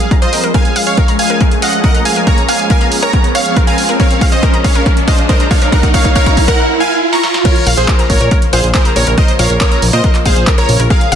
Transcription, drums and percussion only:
0.00 closed hi-hat medium
0.11 kick loud
0.11 closed hi-hat medium
0.22 closed hi-hat medium
0.33 open hi-hat loud
0.44 closed hi-hat medium
0.54 kick loud
0.54 closed hi-hat medium
0.65 closed hi-hat medium
0.76 open hi-hat loud
0.87 closed hi-hat medium
0.97 kick loud
0.97 closed hi-hat medium
1.08 closed hi-hat medium
1.19 open hi-hat loud
1.30 closed hi-hat medium
1.41 kick loud
1.41 closed hi-hat medium
1.51 closed hi-hat medium
1.62 open hi-hat loud
1.73 closed hi-hat medium
1.84 kick loud
1.84 closed hi-hat medium
1.95 closed hi-hat medium
2.05 open hi-hat loud
2.16 closed hi-hat medium
2.27 kick loud
2.27 closed hi-hat medium
2.38 closed hi-hat medium
2.48 open hi-hat loud
2.59 closed hi-hat medium
2.70 kick loud
2.70 closed hi-hat medium
2.81 closed hi-hat medium
2.92 open hi-hat loud
3.02 closed hi-hat medium
3.13 kick loud
3.13 closed hi-hat medium
3.24 closed hi-hat medium
3.35 open hi-hat loud
3.46 closed hi-hat medium
3.56 kick loud
3.56 closed hi-hat medium
3.67 closed hi-hat medium
3.78 open hi-hat loud
3.89 closed hi-hat medium
4.00 kick loud
4.00 closed hi-hat medium
4.11 closed hi-hat medium
4.21 kick loud
4.21 open hi-hat loud
4.32 closed hi-hat medium
4.43 kick loud
4.43 closed hi-hat medium
4.54 closed hi-hat medium
4.64 kick loud
4.64 open hi-hat loud
4.75 closed hi-hat medium
4.86 kick loud
4.86 closed hi-hat medium
4.97 closed hi-hat medium
5.08 kick loud
5.08 open hi-hat loud
5.18 closed hi-hat medium
5.29 kick loud
5.29 closed hi-hat medium
5.40 closed hi-hat medium
5.51 kick loud
5.51 open hi-hat loud
5.62 closed hi-hat medium
5.72 kick loud
5.72 closed hi-hat medium
5.83 kick loud
5.83 closed hi-hat medium
5.94 kick loud
5.94 open hi-hat loud
6.05 kick medium
6.05 closed hi-hat medium
6.16 kick loud
6.16 closed hi-hat medium
6.26 kick medium
6.26 closed hi-hat medium
6.37 kick loud
6.37 open hi-hat loud
6.48 kick medium
6.48 closed hi-hat medium
7.13 snare medium
7.23 snare medium
7.34 snare medium
7.45 kick loud
7.45 closed hi-hat medium
7.45 crash loud
7.56 closed hi-hat medium
7.67 open hi-hat loud
7.77 closed hi-hat medium
7.88 kick loud
7.88 clap loud
7.88 closed hi-hat medium
7.99 closed hi-hat medium
8.10 kick medium
8.10 open hi-hat loud
8.21 closed hi-hat medium
8.31 kick loud
8.31 closed hi-hat medium
8.42 closed hi-hat medium
8.53 open hi-hat loud
8.64 closed hi-hat medium
8.74 kick loud
8.74 clap loud
8.74 closed hi-hat medium
8.85 closed hi-hat medium
8.96 open hi-hat loud
9.07 closed hi-hat medium
9.18 kick loud
9.18 closed hi-hat medium
9.28 closed hi-hat medium
9.39 open hi-hat loud
9.50 closed hi-hat medium
9.61 kick loud
9.61 clap loud
9.61 closed hi-hat medium
9.72 closed hi-hat medium
9.82 open hi-hat loud
9.93 closed hi-hat medium
10.04 kick loud
10.04 closed hi-hat medium
10.15 clap soft
10.15 closed hi-hat medium
10.26 kick medium
10.26 open hi-hat loud
10.36 closed hi-hat medium
10.47 kick loud
10.47 clap loud
10.47 closed hi-hat medium
10.58 closed hi-hat medium
10.69 open hi-hat loud
10.80 closed hi-hat medium
10.90 kick loud
10.90 closed hi-hat medium
11.01 closed hi-hat medium
11.12 open hi-hat loud

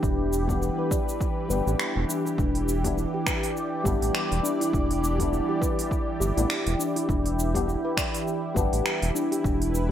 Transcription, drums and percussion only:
0.03 kick loud
0.03 cabasa soft
0.33 cabasa medium
0.49 kick medium
0.49 cabasa soft
0.62 cabasa soft
0.91 kick loud
0.91 cabasa medium
1.09 cabasa soft
1.21 kick loud
1.21 cabasa soft
1.51 cabasa medium
1.68 cabasa soft
1.79 finger snap medium
1.79 cabasa soft
2.10 cabasa medium
2.27 cabasa soft
2.38 kick loud
2.38 cabasa soft
2.55 open hi-hat soft
2.69 cabasa medium
2.85 kick medium
2.85 open hi-hat soft
2.85 cabasa soft
2.98 cabasa soft
3.27 finger snap medium
3.27 kick loud
3.27 cabasa medium
3.43 open hi-hat medium
3.43 cabasa soft
3.57 cabasa soft
3.85 kick loud
3.85 cabasa medium
4.02 open hi-hat soft
4.02 cabasa soft
4.15 finger snap medium
4.15 cabasa soft
4.32 open hi-hat soft
4.45 cabasa medium
4.61 open hi-hat soft
4.61 cabasa soft
4.73 kick loud
4.73 cabasa soft
4.91 open hi-hat soft
5.04 cabasa medium
5.20 kick medium
5.20 open hi-hat soft
5.20 cabasa soft
5.33 cabasa soft
5.62 kick loud
5.62 cabasa medium
5.79 open hi-hat medium
5.79 cabasa soft
5.91 kick medium
5.91 cabasa soft
6.22 cabasa medium
6.38 open hi-hat medium
6.38 cabasa soft
6.50 finger snap medium
6.50 cabasa soft
6.67 open hi-hat soft
6.80 cabasa medium
6.96 open hi-hat soft
6.96 cabasa soft
7.09 kick loud
7.09 cabasa soft
7.26 open hi-hat soft
7.39 cabasa medium
7.55 kick medium
7.55 open hi-hat medium
7.55 cabasa soft
7.69 cabasa soft
7.97 finger snap medium
7.97 kick medium
7.97 cabasa medium
8.14 open hi-hat medium
8.14 cabasa soft
8.28 cabasa soft
8.56 kick loud
8.56 cabasa medium
8.73 open hi-hat medium
8.73 cabasa soft
8.86 finger snap medium
8.86 cabasa soft
9.02 open hi-hat soft
9.16 cabasa medium
9.32 open hi-hat medium
9.32 cabasa soft
9.44 kick loud
9.44 cabasa soft
9.62 open hi-hat soft
9.75 cabasa medium

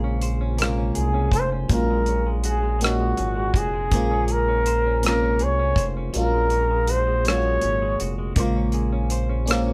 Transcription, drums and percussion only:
0.21 closed hi-hat medium
0.58 cross-stick medium
0.58 closed hi-hat medium
0.95 closed hi-hat soft
1.32 kick medium
1.32 closed hi-hat soft
1.69 kick medium
1.69 closed hi-hat medium
2.06 closed hi-hat soft
2.44 closed hi-hat medium
2.81 cross-stick medium
2.81 closed hi-hat medium
3.17 closed hi-hat soft
3.54 kick medium
3.54 closed hi-hat soft
3.91 kick medium
3.91 closed hi-hat medium
4.28 closed hi-hat soft
4.66 closed hi-hat medium
5.03 cross-stick medium
5.03 closed hi-hat medium
5.39 closed hi-hat soft
5.76 kick medium
5.76 closed hi-hat soft
6.14 closed hi-hat medium
6.50 closed hi-hat soft
6.87 closed hi-hat medium
7.25 cross-stick medium
7.25 closed hi-hat medium
7.61 closed hi-hat soft
8.00 closed hi-hat soft
8.36 kick medium
8.36 closed hi-hat medium
8.72 closed hi-hat soft
9.10 closed hi-hat medium
9.47 cross-stick medium
9.47 closed hi-hat medium

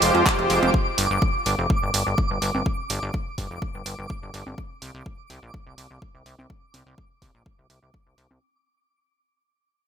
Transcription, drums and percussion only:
0.02 open hi-hat loud
0.15 closed hi-hat soft
0.26 kick loud
0.26 clap loud
0.26 closed hi-hat medium
0.26 high woodblock medium
0.39 closed hi-hat soft
0.50 open hi-hat medium
0.63 closed hi-hat soft
0.63 high conga medium
0.74 kick loud
0.98 open hi-hat loud
1.22 kick loud
1.46 open hi-hat medium
1.70 kick loud
1.94 open hi-hat loud
2.18 kick loud
2.42 open hi-hat medium
2.55 high conga medium
2.66 kick loud
2.90 open hi-hat loud
3.14 kick loud
3.38 kick medium
3.38 open hi-hat medium
3.62 kick loud
3.86 open hi-hat loud
4.10 kick loud
4.34 open hi-hat medium
4.47 high conga medium
4.58 kick loud
4.82 open hi-hat medium
5.06 kick loud
5.30 open hi-hat medium
5.54 kick loud
5.78 open hi-hat loud
6.02 kick loud
6.26 open hi-hat medium
6.39 high conga medium
6.50 kick loud
6.74 open hi-hat loud
6.74 high conga medium
6.98 kick loud
7.22 kick medium
7.22 open hi-hat medium
7.46 kick loud
7.70 open hi-hat medium
7.94 kick loud
8.18 open hi-hat medium
8.31 high conga medium

